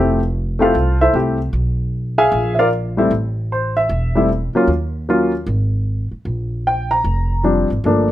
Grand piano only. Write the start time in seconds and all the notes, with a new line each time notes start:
Already playing: A3 C4 E4 G4
0.59 A3 C4 E4 F4 G4 A4 C5 F5
1.01 E4 A4 C5 E5
1.14 A3 C4 E4 G4
2.18 G#4 E5 F5 G#5
2.55 E5
2.59 F4 A#4 D5 F5
2.97 G3 A3 C4 E4
3.52 C5
3.77 E5
4.15 G3 A3 C4 E4
4.55 F#3 A#3 C#4 F4
5.09 F#3 A#3 C#4 F4
6.67 G5
6.91 A#5
7.43 F3 G3 C4 D4
7.85 F3 A3 A#3 D4